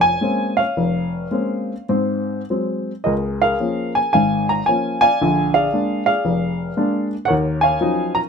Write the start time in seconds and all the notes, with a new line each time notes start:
Already playing: F1 F2 C#5
0.01 G#5
0.21 G#3 A#3 C4 C#4
0.57 C#5 F5
0.77 F1
1.31 G#3 A#3 C4 C#4
1.89 G#2 C4
2.50 F#3 G#3 C4
3.04 C#2 G#4 A#4 D#5
3.42 G#4 A#4 F5
3.60 F3 A#3 C#4
3.95 G#5
4.13 G#1 G#2 F5 G#5
4.49 A#5
4.66 F3 A#3 C#4 G#5
5.01 D5 F5 G#5
5.21 A#1 D3
5.54 G#4 D5 F5
5.73 G#3 A#3 D4
6.06 G#4 D5 F5
6.25 F1
6.77 G#3 A#3 D4
7.25 A#4 C#5 F#5
7.30 D#2
7.61 C#5 F5 G#5
7.81 F3 F#3 C#4 D#4
8.15 A#5